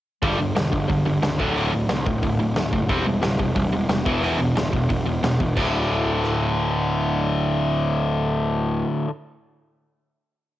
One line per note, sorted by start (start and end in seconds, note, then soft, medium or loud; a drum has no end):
0.22 0.39 G1 medium
0.22 0.38 G2 medium
0.22 0.38 D3 medium
0.22 0.39 G3 loud
0.22 kick loud
0.22 open hi-hat medium
0.39 0.55 G1 medium
0.39 0.54 G2 medium
0.39 0.54 D3 medium
0.55 0.72 E1 medium
0.55 0.71 G2 medium
0.55 0.71 D3 medium
0.55 snare loud
0.55 open hi-hat medium
0.72 0.89 G1 medium
0.72 0.87 G2 medium
0.72 0.87 D3 medium
0.72 kick medium
0.88 1.05 G1 medium
0.88 1.03 G2 medium
0.88 1.04 D3 medium
0.88 kick loud
0.88 open hi-hat medium
1.05 1.22 G1 medium
1.05 1.21 G2 medium
1.05 1.21 D3 medium
1.22 1.39 C#2 medium
1.22 1.37 G2 medium
1.22 1.38 D3 medium
1.22 snare loud
1.22 open hi-hat medium
1.38 1.56 D1 medium
1.38 1.54 D2 medium
1.38 1.55 A2 medium
1.38 1.55 D3 medium
1.38 kick loud
1.56 1.72 D1 medium
1.56 1.72 D2 medium
1.56 1.72 A2 medium
1.56 1.72 D3 loud
1.56 open hi-hat medium
1.73 1.89 D1 medium
1.73 1.88 D2 medium
1.73 1.88 A2 medium
1.89 2.05 C2 medium
1.89 2.04 D2 medium
1.89 2.05 A2 medium
1.89 snare loud
1.89 open hi-hat medium
2.06 2.22 D1 medium
2.06 2.21 D2 medium
2.06 2.21 A2 medium
2.06 kick medium
2.22 2.39 D1 medium
2.22 2.38 D2 medium
2.22 2.38 A2 medium
2.22 kick loud
2.22 open hi-hat soft
2.39 2.55 D1 medium
2.39 2.54 D2 medium
2.39 2.54 A2 medium
2.56 2.72 D1 medium
2.56 2.71 D2 medium
2.56 2.71 A2 medium
2.56 snare loud
2.56 open hi-hat medium
2.73 2.89 F#1 medium
2.73 2.88 D2 medium
2.73 2.88 A2 medium
2.73 kick medium
2.89 3.05 E1 medium
2.89 3.04 C3 medium
2.89 3.04 G3 medium
2.89 3.05 C4 medium
2.89 kick loud
2.89 open hi-hat medium
3.05 3.22 E1 medium
3.05 3.20 C3 medium
3.05 3.21 G3 medium
3.22 3.39 D1 medium
3.22 3.37 C3 medium
3.22 3.37 G3 medium
3.22 snare loud
3.22 open hi-hat medium
3.39 3.56 E1 medium
3.39 3.54 C3 medium
3.39 3.54 G3 medium
3.39 kick medium
3.55 3.72 E1 medium
3.55 3.71 C3 medium
3.55 3.71 G3 medium
3.55 kick loud
3.55 open hi-hat medium
3.73 3.89 E1 medium
3.73 3.88 C3 medium
3.73 3.88 G3 medium
3.89 4.05 E1 medium
3.89 4.04 C3 medium
3.89 4.05 G3 medium
3.89 snare loud
3.89 open hi-hat medium
4.05 4.21 E1 medium
4.05 4.22 E2 medium
4.05 4.22 B2 medium
4.05 4.22 E3 medium
4.05 kick loud
4.21 4.38 E1 medium
4.21 4.38 E2 medium
4.21 4.38 B2 medium
4.21 4.39 E3 medium
4.21 open hi-hat medium
4.39 4.55 E1 medium
4.39 4.55 E2 medium
4.39 4.55 B2 medium
4.56 4.72 D1 medium
4.56 4.71 E2 medium
4.56 4.71 B2 medium
4.56 snare loud
4.56 open hi-hat medium
4.73 4.89 E1 medium
4.73 4.88 E2 medium
4.73 4.88 B2 medium
4.73 kick medium
4.89 5.05 E1 medium
4.89 5.04 E2 medium
4.89 5.05 B2 medium
4.89 kick loud
4.89 open hi-hat medium
5.06 5.22 E1 medium
5.06 5.21 E2 medium
5.06 5.21 B2 medium
5.23 5.39 E1 medium
5.23 5.38 E2 medium
5.23 5.38 B2 medium
5.23 snare loud
5.23 open hi-hat soft
5.40 5.56 E1 medium
5.40 5.55 E2 medium
5.40 5.55 B2 medium
5.40 kick medium
5.57 8.82 D1 medium
5.57 9.07 D2 medium
5.57 9.09 A2 medium
5.57 9.10 D3 loud
5.57 kick loud
5.57 crash medium
6.24 cross-stick medium